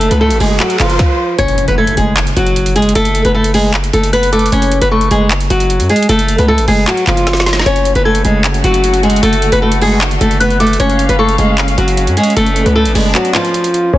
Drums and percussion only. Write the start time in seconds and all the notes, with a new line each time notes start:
0.01 closed hi-hat
0.11 closed hi-hat
0.30 closed hi-hat
0.40 open hi-hat
0.60 clap, closed hi-hat
0.70 closed hi-hat
0.80 clap, closed hi-hat
0.90 closed hi-hat
0.99 kick, snare
1.39 closed hi-hat
1.48 closed hi-hat
1.58 closed hi-hat
1.68 closed hi-hat
1.87 closed hi-hat
1.97 closed hi-hat
2.17 clap, closed hi-hat
2.27 closed hi-hat
2.37 closed hi-hat
2.47 closed hi-hat
2.56 closed hi-hat
2.66 closed hi-hat
2.76 closed hi-hat
2.82 closed hi-hat
2.89 closed hi-hat
2.95 closed hi-hat
3.05 closed hi-hat
3.15 closed hi-hat
3.25 closed hi-hat
3.44 closed hi-hat
3.54 open hi-hat
3.74 clap, closed hi-hat
3.84 closed hi-hat
3.93 closed hi-hat
4.03 closed hi-hat
4.13 closed hi-hat
4.23 closed hi-hat
4.33 closed hi-hat
4.39 closed hi-hat
4.46 closed hi-hat
4.52 closed hi-hat
4.62 closed hi-hat
4.72 closed hi-hat
4.82 closed hi-hat
5.01 closed hi-hat
5.11 closed hi-hat
5.31 clap, closed hi-hat
5.41 closed hi-hat
5.50 closed hi-hat
5.60 closed hi-hat
5.70 closed hi-hat
5.80 closed hi-hat
5.89 closed hi-hat
5.96 closed hi-hat
6.03 closed hi-hat
6.09 closed hi-hat
6.19 closed hi-hat
6.28 closed hi-hat
6.38 closed hi-hat
6.58 closed hi-hat
6.68 open hi-hat
6.87 clap, closed hi-hat
6.97 closed hi-hat
7.07 clap, closed hi-hat
7.17 closed hi-hat
7.27 snare, closed hi-hat
7.33 snare, closed hi-hat
7.40 snare
7.46 snare, closed hi-hat
7.53 snare
7.59 snare
7.66 closed hi-hat
7.76 closed hi-hat
7.85 closed hi-hat
7.95 closed hi-hat
8.15 closed hi-hat
8.25 closed hi-hat
8.44 clap, closed hi-hat
8.54 closed hi-hat
8.64 closed hi-hat
8.74 closed hi-hat
8.84 closed hi-hat
8.94 closed hi-hat
9.03 closed hi-hat
9.10 closed hi-hat
9.16 closed hi-hat
9.23 closed hi-hat
9.33 closed hi-hat
9.42 closed hi-hat
9.52 closed hi-hat
9.72 closed hi-hat
9.81 open hi-hat
10.01 clap, closed hi-hat
10.11 closed hi-hat
10.21 closed hi-hat
10.31 closed hi-hat
10.41 closed hi-hat
10.50 closed hi-hat
10.60 closed hi-hat
10.67 closed hi-hat
10.73 closed hi-hat
10.80 closed hi-hat
10.90 closed hi-hat
10.99 closed hi-hat
11.09 closed hi-hat
11.29 closed hi-hat
11.38 closed hi-hat
11.58 clap, closed hi-hat
11.68 closed hi-hat
11.78 closed hi-hat
11.88 closed hi-hat
11.97 closed hi-hat
12.07 closed hi-hat
12.17 closed hi-hat
12.23 closed hi-hat
12.30 closed hi-hat
12.37 closed hi-hat
12.46 closed hi-hat
12.56 closed hi-hat
12.66 closed hi-hat
12.85 closed hi-hat
12.95 open hi-hat
13.15 clap, closed hi-hat
13.25 closed hi-hat
13.35 clap, closed hi-hat
13.45 closed hi-hat
13.54 closed hi-hat
13.64 closed hi-hat
13.74 closed hi-hat